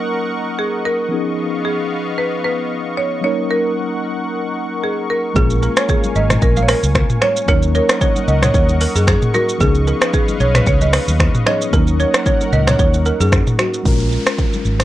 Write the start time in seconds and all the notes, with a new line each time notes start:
Already playing: F#3 A#3 C#4 D#4 A#4 D#5 F#5 C#6
0.59 G#4
0.85 A#4
1.09 F3 B3 C#4 D#4 F5 C#6
1.14 G#4
1.65 G#4
2.18 B4
2.44 B4
2.97 C#5
3.21 F#3 A#3 C#4 D#4 A#4 C#5 F#5
3.26 A#4
3.51 A#4
4.84 G#4
5.10 A#4
5.33 A#1 G#3 A#3 C#4 F4 G#4 F5 G#5, kick, low conga, shaker
5.38 A#4
5.50 shaker
5.63 A#4, shaker
5.77 C#5, finger snap, cross-stick, shaker
5.89 G#4, kick, low conga, shaker
6.04 high conga, shaker
6.16 G#1 D#5, high conga, shaker
6.30 finger snap, cross-stick, mid tom, high conga, shaker
6.42 A#1 A#4, kick, shaker
6.56 F5, high conga, shaker
6.63 C#5
6.68 A#4, finger snap, cross-stick, open hi-hat, shaker
6.83 C#2, high conga, shaker
6.95 finger snap, kick, cross-stick, low conga, shaker
7.10 mid tom, shaker
7.22 C#5, finger snap, cross-stick, high conga, shaker
7.36 shaker
7.46 D#2 F#3 A#3 C#4 D#4 A#4 C#5 D#5 F#5 C#6, kick, low conga, shaker
7.51 A#4
7.62 shaker
7.75 A#4 C#5, shaker
7.89 finger snap, cross-stick, shaker
8.01 C#5, kick, low conga, shaker
8.16 high conga, shaker
8.28 C#2 D#5, high conga, shaker
8.43 C#5, finger snap, cross-stick, mid tom, high conga, shaker
8.54 D#2 C#5, kick, shaker
8.69 high conga, shaker
8.81 A#4, open hi-hat, shaker
8.95 F#2 G#4, high conga, shaker
9.07 G#4, finger snap, kick, cross-stick, low conga, shaker
9.22 mid tom, shaker
9.34 F#4 A#4, high conga, shaker
9.49 shaker
9.58 C#2 F3 B3 C#4 D#4 G#4 B4 D#5 F5, kick, low conga, shaker
9.63 G#4
9.75 shaker
9.87 A#4, shaker
10.02 B4, finger snap, cross-stick, shaker
10.13 G#4, kick, low conga, shaker
10.28 high conga, shaker
10.40 B1 C#5, high conga, shaker
10.55 B4, finger snap, cross-stick, mid tom, high conga, shaker
10.67 C#2 C#5, kick, shaker
10.81 D#5, high conga, shaker
10.93 B4, finger snap, cross-stick, open hi-hat, shaker
11.08 D#2, high conga, shaker
11.20 finger snap, kick, cross-stick, low conga, shaker
11.35 mid tom, shaker
11.45 F3 B3 C#4 D#4 G#4 C#5 D#5, finger snap, cross-stick, high conga, shaker
11.61 shaker
11.71 D#2 F#3 A#3 C#4 D#4 A#4 F#5, kick, low conga, shaker
11.76 A#4
11.87 shaker
12.00 C#5, shaker
12.14 finger snap, cross-stick, shaker
12.26 C#5, kick, low conga, shaker
12.41 high conga, shaker
12.53 C#2 D#5, mid tom, high conga, shaker
12.67 C#5, finger snap, cross-stick, mid tom, high conga, shaker
12.79 D#2 C#5, kick, shaker
12.94 high conga, shaker
13.06 A#4, shaker
13.20 F#2 G#4, high conga, shaker
13.32 finger snap, kick, cross-stick, low conga, shaker
13.47 mid tom, shaker
13.59 F#4, finger snap, cross-stick, high conga, shaker
13.74 shaker
13.83 A#1 G#3 C#4 F4, kick, downlifter, low conga, shaker
13.88 A#4
14.00 shaker
14.12 shaker
14.27 finger snap, cross-stick, shaker
14.38 kick, low conga, shaker
14.53 high conga, shaker
14.65 G#1, shaker
14.80 finger snap, cross-stick, high conga, shaker